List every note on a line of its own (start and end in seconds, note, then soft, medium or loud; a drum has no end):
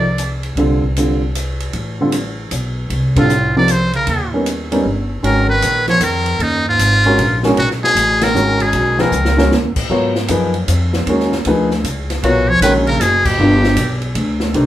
0.00 0.53 C2 medium
0.00 0.38 F3 medium
0.00 0.40 D5 medium
0.18 hi-hat pedal medium
0.18 ride medium
0.43 ride soft
0.55 1.69 C2 medium
0.55 0.80 D3 medium
0.55 0.80 G3 soft
0.55 0.80 C4 soft
0.55 0.80 F4 soft
0.55 0.81 A4 medium
0.55 ride medium
0.82 kick soft
0.96 1.19 D3 soft
0.96 1.20 G3 soft
0.96 1.20 C4 soft
0.96 1.20 F4 soft
0.96 1.20 A4 medium
0.96 hi-hat pedal soft
0.96 ride medium
1.35 hi-hat pedal medium
1.35 ride medium
1.60 ride soft
1.73 2.48 A1 medium
1.73 ride medium
2.01 2.12 D3 medium
2.01 2.12 G3 medium
2.01 2.12 C4 medium
2.01 2.13 F4 medium
2.01 2.13 A4 medium
2.12 hi-hat pedal soft
2.12 ride medium
2.51 2.88 B1 medium
2.51 hi-hat pedal medium
2.51 ride medium
2.90 4.03 C2 medium
2.90 ride medium
3.16 3.52 A2 medium
3.16 3.29 D3 medium
3.16 3.29 G3 medium
3.16 3.29 C4 medium
3.16 3.29 F4 medium
3.16 3.53 F4 medium
3.16 3.29 A4 medium
3.16 kick medium
3.16 ride medium
3.29 hi-hat pedal medium
3.56 3.68 C3 medium
3.56 3.69 F3 medium
3.56 3.68 F3 medium
3.56 3.68 A#3 medium
3.56 3.68 D#4 medium
3.56 3.68 G4 medium
3.56 3.73 D5 medium
3.68 3.93 F3 medium
3.68 3.95 C5 medium
3.68 hi-hat pedal medium
3.68 ride medium
3.93 4.30 C#3 medium
3.93 4.31 A#4 medium
3.93 ride soft
4.07 4.81 D#2 medium
4.07 ride medium
4.34 4.46 G3 medium
4.34 4.46 B3 soft
4.34 4.46 C#4 soft
4.34 4.46 D#4 medium
4.34 4.46 A#4 medium
4.46 hi-hat pedal soft
4.46 ride medium
4.71 4.84 G3 medium
4.71 4.84 B3 medium
4.71 4.84 C#4 medium
4.71 4.84 D#4 medium
4.71 4.84 A#4 medium
4.71 ride medium
4.85 5.21 G1 medium
5.23 5.61 G#1 medium
5.23 5.47 D#3 medium
5.23 5.46 D#3 medium
5.23 5.46 G#3 medium
5.23 5.47 C#4 medium
5.23 5.47 F#4 medium
5.23 5.47 A#4 medium
5.23 5.48 A#4 medium
5.23 ride medium
5.48 5.85 D#3 medium
5.48 5.85 B4 medium
5.62 6.00 A#1 medium
5.62 hi-hat pedal medium
5.62 ride medium
5.87 6.03 F3 medium
5.87 6.05 C#5 medium
5.87 snare soft
5.87 ride soft
6.00 6.38 F2 medium
6.00 6.43 D#3 medium
6.00 6.44 A#4 medium
6.00 hi-hat pedal medium
6.00 ride medium
6.26 ride medium
6.39 6.77 D#2 medium
6.39 6.66 F#2 medium
6.39 6.66 D#4 medium
6.39 ride medium
6.66 7.40 G#2 medium
6.66 7.41 F4 loud
6.79 7.17 G#1 medium
6.79 hi-hat pedal medium
6.79 ride medium
7.04 7.17 D#3 medium
7.04 7.17 G#3 medium
7.04 7.17 C#4 medium
7.04 7.18 F#4 medium
7.04 7.18 A#4 medium
7.04 ride soft
7.18 7.56 A#1 medium
7.18 ride medium
7.43 7.56 D#3 medium
7.43 7.56 G#3 medium
7.43 7.56 C#4 medium
7.43 7.56 F#4 medium
7.43 7.57 A#4 medium
7.43 snare medium
7.57 7.94 B1 medium
7.57 7.69 A#2 medium
7.57 7.69 F#4 medium
7.57 ride medium
7.71 snare soft
7.82 8.23 B2 medium
7.82 8.25 G#4 medium
7.82 snare soft
7.95 8.33 A1 medium
7.95 hi-hat pedal medium
7.95 ride medium
8.21 8.62 D#3 medium
8.21 8.63 A#4 medium
8.21 snare medium
8.21 ride medium
8.34 8.72 G#1 medium
8.34 8.93 D#3 medium
8.34 8.94 G#3 medium
8.34 8.94 C#4 medium
8.34 8.94 F#4 medium
8.34 8.94 A#4 medium
8.34 hi-hat pedal medium
8.60 9.01 B2 medium
8.60 9.02 G#4 medium
8.60 ride soft
8.73 9.11 B1 medium
8.73 ride medium
8.98 9.51 D#3 medium
8.98 9.11 F3 medium
8.98 9.11 A#3 medium
8.98 9.11 D#4 medium
8.98 9.11 G#4 medium
8.98 9.52 A#4 medium
8.98 9.12 B4 medium
8.98 snare medium
9.11 9.49 C#2 medium
9.11 hi-hat pedal medium
9.25 snare medium
9.37 9.50 D#3 medium
9.37 9.50 G#3 medium
9.37 9.50 C#4 medium
9.37 9.50 F#4 medium
9.37 9.50 A#4 medium
9.37 snare medium
9.51 9.74 D#2 medium
9.51 snare medium
9.76 muted upright bass stroke soft
9.76 kick medium
9.76 crash medium
9.90 10.27 G#2 medium
9.90 10.12 F#3 medium
9.90 10.13 B3 medium
9.90 10.13 F4 medium
9.90 10.13 A#4 medium
9.90 10.13 C#5 medium
10.15 snare soft
10.28 10.67 F#2 medium
10.28 10.51 F3 medium
10.28 10.52 A#3 medium
10.28 10.52 D#4 medium
10.28 10.52 G#4 medium
10.28 10.52 B4 medium
10.28 hi-hat pedal soft
10.28 ride medium
10.54 ride soft
10.68 11.05 F2 medium
10.68 hi-hat pedal medium
10.68 ride medium
10.93 snare medium
11.06 11.44 D#2 medium
11.06 11.30 D#3 medium
11.06 11.30 G#3 medium
11.06 11.30 C#4 medium
11.06 11.31 F#4 medium
11.06 11.31 A#4 medium
11.06 ride medium
11.20 snare soft
11.32 snare soft
11.45 11.83 D2 medium
11.45 11.69 F3 medium
11.45 11.69 A#3 medium
11.45 11.69 D#4 medium
11.45 11.69 G#4 medium
11.45 11.69 B4 medium
11.45 ride medium
11.71 snare soft
11.84 12.21 C#2 medium
11.84 hi-hat pedal medium
11.84 ride medium
12.10 snare soft
12.10 ride soft
12.23 12.60 B1 medium
12.23 12.50 A#2 medium
12.23 12.46 F#3 medium
12.23 12.46 B3 medium
12.23 12.46 F4 medium
12.23 12.50 F#4 medium
12.23 12.46 A#4 medium
12.23 12.46 C#5 medium
12.23 ride medium
12.49 12.62 F3 medium
12.49 12.61 C#5 loud
12.61 12.98 A#1 medium
12.61 12.84 D#3 medium
12.61 12.74 D#3 medium
12.61 12.84 G#3 medium
12.61 12.85 C#4 medium
12.61 12.85 F#4 medium
12.61 12.73 B4 medium
12.61 12.85 C#5 medium
12.61 hi-hat pedal medium
12.61 ride medium
12.87 13.01 C#3 medium
12.87 13.03 A#4 medium
12.87 ride soft
12.99 13.37 F#1 medium
12.99 13.26 B2 medium
12.99 13.27 G#4 medium
12.99 snare soft
12.99 hi-hat pedal medium
12.99 ride medium
13.25 14.03 B2 medium
13.25 14.03 G4 medium
13.25 kick medium
13.25 crash medium
13.39 13.75 G1 medium
13.39 13.62 D#3 medium
13.39 13.62 G3 medium
13.39 13.62 B3 medium
13.39 13.62 D4 medium
13.39 13.62 F4 medium
13.64 snare medium
13.76 14.14 B1 medium
13.76 hi-hat pedal medium
13.76 ride medium
14.02 ride soft
14.15 14.53 D2 medium
14.15 ride medium
14.40 snare soft
14.54 14.66 C2 medium
14.54 14.66 D#3 medium
14.54 14.66 A3 medium
14.54 14.66 D4 medium
14.54 14.66 G4 medium
14.54 14.66 C5 medium
14.54 ride medium